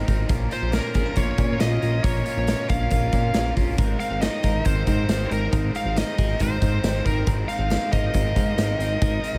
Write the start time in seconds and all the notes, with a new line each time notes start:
Already playing: G#3 C4 A#4
0.06 G#1 C4 D#4 A#4, kick, closed hi-hat, tambourine
0.28 A#1 A#2 A#3 C#4 F4 A#4, kick, closed hi-hat, tambourine
0.50 C#4 F4 A#4 C5, closed hi-hat, tambourine
0.62 A#1
0.72 A#3 C#4 F4 A#4, snare, closed hi-hat, tambourine
0.93 A#1 C#4 F4 G#4 A#4, kick, closed hi-hat, tambourine
1.06 A#4
1.15 A#1 A#2 A#3 C#4 F4 A#4 C#5, kick, closed hi-hat, tambourine
1.38 A#2 C#4 F4 A#4, kick, closed hi-hat
1.59 A#1 A#3 C#4 F4 A#4 D#5, snare, closed hi-hat, tambourine
1.82 A#1 C#4 F4 A#4, closed hi-hat, tambourine
2.03 A#1 A#2 A#3 C#4 F4 A#4 C#5, kick, closed hi-hat, tambourine
2.25 C#4 F4 A#4, closed hi-hat, tambourine
2.37 A#1
2.47 A#3 C#4 F4 A#4, snare, closed hi-hat, tambourine
2.68 A#1 C#4 F4 A#4 F5, kick, closed hi-hat, tambourine
2.90 A#1 A#2 A#3 C#4 F4 A#4, kick, closed hi-hat
3.12 A#2 C#4 F4 A#4, kick, closed hi-hat, tambourine
3.33 A#1 A#3 C#4 F4 A#4, snare, closed hi-hat, tambourine
3.55 A#1 C#4 F4 A#4, kick, open hi-hat, tambourine
3.77 G#1 G#3 C4 D#4 A#4, kick, closed hi-hat, tambourine
3.99 C4 D#4 A#4 F5, closed hi-hat, tambourine
4.11 G#1
4.21 G#3 C4 D#4 A#4 D#5, snare, closed hi-hat, tambourine
4.43 G#1 C4 D#4 A#4, kick, closed hi-hat, tambourine
4.65 G#1 G#3 C4 D#4 A#4 C5, kick, closed hi-hat
4.87 G#2 C4 D#4 A#4, kick, closed hi-hat
5.08 G#1 G#3 C4 D#4 A#4, snare, closed hi-hat, tambourine
5.30 G#1 C4 D#4 A#4, closed hi-hat, tambourine
5.52 G#1 G#3 C4 D#4 A#4, kick, closed hi-hat, tambourine
5.73 C4 D#4 A#4 F5, closed hi-hat, tambourine
5.85 G#1
5.96 G#3 C4 D#4 A#4 D#5, snare, closed hi-hat, tambourine
6.18 G#1 C4 D#4 G#4 A#4, kick, closed hi-hat, tambourine
6.29 A#4
6.40 G#1 G#3 C4 D#4 A#4 C5, kick, closed hi-hat
6.62 G#2 C4 D#4 A#4, kick, closed hi-hat, tambourine
6.83 G#1 G#3 C4 D#4 A#4, snare, closed hi-hat, tambourine
7.04 G#1 C4 D#4 A#4, kick, closed hi-hat, tambourine
7.26 G#1 G#3 C4 D#4 A#4, kick, closed hi-hat, tambourine
7.48 C4 D#4 A#4 F5, closed hi-hat, tambourine
7.59 G#1
7.70 G#3 C4 D#4 A#4, snare, closed hi-hat, tambourine
7.92 G#1 C4 D#4 A#4 D#5, kick, closed hi-hat, tambourine
8.13 G#1 G#3 C4 D#4 A#4, kick, closed hi-hat, tambourine
8.35 G#2 C4 D#4 A#4, kick, closed hi-hat, tambourine
8.57 G#1 G#3 C4 D#4 A#4, snare, closed hi-hat, tambourine
8.79 G#1 C4 D#4 A#4, closed hi-hat, tambourine
9.01 G#1 G#3 C4 D#4 A#4, kick, closed hi-hat, tambourine
9.22 C4 D#4 A#4, closed hi-hat, tambourine
9.34 G#1